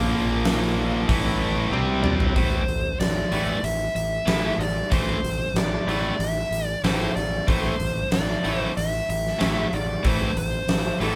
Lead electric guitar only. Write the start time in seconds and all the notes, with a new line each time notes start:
2.03 D5
2.36 C5
3.00 D5
3.64 E5
3.96 E5
4.59 D5
4.93 C5
5.57 D5
6.21 E5
6.66 D5
6.84 C5
7.16 D5
7.48 C5
8.12 D5
8.58 C5
8.77 E5
9.10 E5
9.74 D5
10.07 C5
10.38 C5
11.03 A4